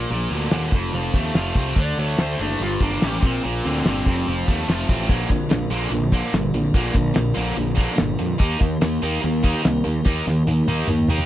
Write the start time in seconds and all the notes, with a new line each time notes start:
0.10 A#1 A#2, closed hi-hat
0.31 D2 D3, closed hi-hat
0.51 D#2 D3, snare, closed hi-hat
0.72 F1 F2, kick, closed hi-hat
0.92 F1 F3, closed hi-hat
1.14 D#2 A3, kick, closed hi-hat
1.34 F1 F4, snare, closed hi-hat
1.55 C2 C4, kick, closed hi-hat
1.76 D2 D3 D5, kick, closed hi-hat
1.98 D2 A3 C#5, closed hi-hat
2.18 D2 D3 C5, snare, closed hi-hat
2.39 F#1 A3 D4, closed hi-hat
2.60 G1 G2 F4, closed hi-hat
2.81 G1 A#3 D4, kick, closed hi-hat
3.01 A1 C#4 G4, snare, closed hi-hat
3.22 A#1 A#2 C4, kick, closed hi-hat
3.43 A#1 A#2, closed hi-hat
3.65 D2 D3 C4, closed hi-hat
3.85 G1 D3 C4, snare, closed hi-hat
4.06 F1 F2, kick, closed hi-hat
4.28 F1 F3, closed hi-hat
4.48 D#2 A3, kick, closed hi-hat
4.68 F1 F4, snare, closed hi-hat
4.89 A1 C4, kick, closed hi-hat
5.08 A#1 A#2 D3 A#3 B3 D#4 F#4 B4, kick, crash
5.24 A#3 D4 F4 A#4
5.29 A#1 A#2 D3, kick, closed hi-hat
5.50 A#1 A#2 D3, snare, closed hi-hat
5.71 A#1 A#2 D3 A#3, closed hi-hat
5.91 A#1 A#2 D3, closed hi-hat
6.12 A#2 D3 A#3, kick, closed hi-hat
6.33 G1 A#2 D3, snare, closed hi-hat
6.54 A#1 A#2 D3, closed hi-hat
6.74 A#1 A#2 D3 A#3, kick, closed hi-hat
6.94 A#1 A#2 D3, kick, closed hi-hat
7.14 A#1 A#2 D3, snare, closed hi-hat
7.34 A#1 A#2 D3 A#3, closed hi-hat
7.57 A#1 A#2 D3, closed hi-hat
7.75 A#2 D3 A#3, kick, closed hi-hat
7.96 G1 A#2 D3, snare, closed hi-hat
8.19 F2 A#2 D3, closed hi-hat
8.38 D#2 D#3 A#3 D#4 G4 A#4, kick, closed hi-hat
8.59 D#2 D#3 A#3, kick, closed hi-hat
8.81 D#2 D#3 A#3, snare, closed hi-hat
9.02 D#2 D#3 A#3 D#4, closed hi-hat
9.22 D#2 D#3 A#3, closed hi-hat
9.43 D#3 A#3 D#4, kick, closed hi-hat
9.62 C2 D#3 A#3, snare, closed hi-hat
9.84 D#2 D#3 A#3, closed hi-hat
10.05 D#2 D#3 A#3 D#4, kick, snare
10.27 D#2 D#3 A#3, snare
10.47 D#2 D#3 A#3, high tom
10.67 D#2 D#3 A#3 D#4, high tom
10.88 D#2 D#3 A#3, mid tom
10.99 mid tom
11.08 D#3 A#3 D#4, mid tom
11.18 mid tom